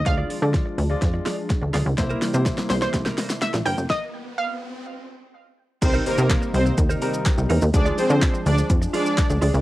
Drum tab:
CC |----------------|----------------|----------------|x---------------|
HH |x-o-x-o-x-o-x-o-|x-o-x-o-x-o-x-o-|----------------|x-o-x-o-x-o-x-o-|
SH |----------------|xxxxxxxxxxxxxxxx|----------------|xxxxxxxxxxxxxxxx|
CP |----------------|----------------|----------------|----x-------x---|
SD |o---o---o-o-o-o-|o-o-oooooooooo--|o---------------|----o-------o---|
BD |o---o---o---o---|o---o---o-------|o---------------|o---o---o---o---|

CC |----------------|
HH |x-o-x-o-x-o-x-o-|
SH |xxxxxxxxxxxxxxxx|
CP |----x-------x---|
SD |----o-------o---|
BD |o---o---o---o---|